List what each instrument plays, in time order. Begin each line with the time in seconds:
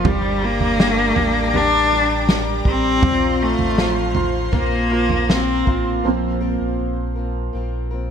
0.04 sub bass G1, steel-string acoustic guitar G3 D4 G4 A#4, upright piano G3, cello G3, french horn section D4, analog synth pad D5 G5 A#5 D6, kick, floor tom
0.43 upright piano G3, cello A#3
0.61 floor tom
0.78 steel-string acoustic guitar G3 D4 G4 A#4, upright piano G3, snare
1.16 sub bass A1, upright piano G3, floor tom
1.53 steel-string acoustic guitar G3 D4 G4 A#4, upright piano G3, cello D4, floor tom
1.92 upright piano G3
2.27 steel-string acoustic guitar G3 D4 G4 A#4, upright piano G3, snare
2.65 sub bass A1, upright piano G3, cello C4, kick
2.97 french horn section E4
3.02 sub bass A#1, steel-string acoustic guitar C4 F4, upright piano C4, french horn section F4, analog synth pad C5 F5 C6, kick, floor tom
3.41 cello A3, upright piano F4
3.59 sub bass A1, floor tom
3.78 upright piano F3, steel-string acoustic guitar C4 F4, snare
4.15 upright piano F4, floor tom
4.52 sub bass A#1, steel-string acoustic guitar A#3 C4 F4 A#4, upright piano A#3, cello A#3, kick, floor tom
4.91 upright piano F4
5.09 floor tom
5.29 steel-string acoustic guitar A#3 C4 F4 A#4, upright piano A#3, cello C4, snare
5.65 sub bass A1, steel-string acoustic guitar C4 F4 A#4, upright piano F4, kick
6.04 sub bass A#1, upright piano F3 A#3 C4, steel-string acoustic guitar A#3 C4 F4 A#4
6.41 steel-string acoustic guitar A#3 C4 F4 A#4
6.61 sub bass A#1
6.80 sub bass A#1
7.16 steel-string acoustic guitar C4 F4 A#4
7.53 sub bass A#1, steel-string acoustic guitar A#3 C4 F4 A#4
7.91 steel-string acoustic guitar C4 F4 A#4